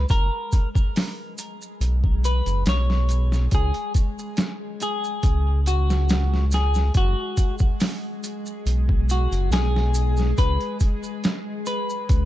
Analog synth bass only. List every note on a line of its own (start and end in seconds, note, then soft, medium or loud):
0.10 0.29 F#1 loud
1.81 2.42 B1 medium
2.46 2.64 F#1 medium
2.66 3.48 B1 loud
3.52 3.72 C#2 loud
5.23 6.91 C#2 medium
6.95 7.15 F#1 loud
8.66 9.27 B1 medium
9.31 9.49 F#1 medium
9.51 10.33 B1 loud
10.38 10.58 C#2 loud
12.10 12.25 C#2 medium